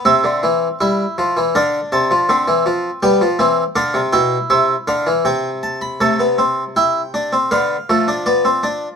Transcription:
<<
  \new Staff \with { instrumentName = "Harpsichord" } { \time 4/4 \key c \major \tempo 4 = 80 << { e''2 f''8 a''4. | g''4 f''8 g''8 e''8 f''8 g''8 a''16 b''16 | \key a \minor a''4 g''4 f''4 d''4 | } \\ { c'4 e'4 d'4 c'4 | b8 c'8 d'8 e'2~ e'8 | a16 b16 c'8 e'8 d'16 c'16 b8 a16 d'16 b16 c'16 d'8 | } >> }
  \new Staff \with { instrumentName = "Harpsichord" } { \clef bass \time 4/4 \key c \major c16 d16 e8 g8 f16 e16 d8 c16 f16 d16 e16 f8 | g16 f16 e8 d16 c16 b,8 c8 d16 e16 c4 | \key a \minor c2 d8 f4. | }
>>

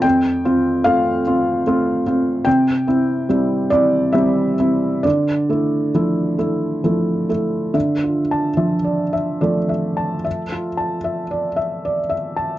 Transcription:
\new Staff \with { instrumentName = "Felt piano" } { \time 3/4 \key d \minor \tempo 4 = 72 << { g''4 f''2 | g''4. d''8 e''4 | d''2~ d''8 r8 | \tuplet 3/2 { e''8 f'8 a''8 e''8 d''8 e''8 d''8 e''8 a''8 } |
\tuplet 3/2 { e''8 f'8 a''8 e''8 d''8 e''8 d''8 e''8 a''8 } | } \\ { f,8 <c' f'>8 <a c' f'>8 <c' f'>8 <a c' f'>8 <c' f'>8 | c8 <c' e'>8 <g c' e'>8 <c' e'>8 <g c' e'>8 <c' e'>8 | d8 <a e'>8 <f a e'>8 <a e'>8 <f a e'>8 <a e'>8 | d4 f4 <f a>4~ |
<f a>2. | } >> }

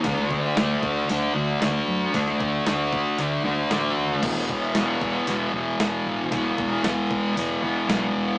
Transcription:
<<
  \new Staff \with { instrumentName = "Distorted electric guitar" } { \clef bass \time 4/4 \key d \lydian \tempo 4 = 115 <d a d'>4 <d a d'>4 <d a d'>8 <a d'>8 <d a d'>4 | <d a d'>4 <d a d'>4 <d a d'>8 <a d'>8 <d a d'>4 | <e, b, e>4 <e, b, e>4 <e, b, e>8 <b, e>8 <e, b, e>4 | <e, b, e>4 <e, b, e>4 <e, b, e>8 <b, e>8 <e, b, e>4 | }
  \new Staff \with { instrumentName = "Fingered electric bass" } { \clef bass \time 4/4 \key d \lydian d,4 d,8 d,8 d,8 d,8 d,8 fis,8 | d,8 d,8 d,4 d,8 d,8 a,,8 dis,8 | e,,4 e,,8 e,,8 e,,8 e,,8 e,,8 a,,8 | e,,8 e,,8 e,,4 e,,8 e,,8 b,,8 e,,8 | }
  \new DrumStaff \with { instrumentName = "Drums" } \drummode { \time 4/4 <hho bd>16 sn16 bd8 <hho sn>8 bd8 hho4 <hho sn>4 | <hho bd>16 sn16 bd8 <hho sn>8 bd8 hho4 <hho sn>4 | <cymc bd>8 bd8 <hho sn>8 bd8 hho4 <hho sn>4 | <hho bd>8 bd8 <hho sn>8 bd8 hho4 <hho sn>4 | }
>>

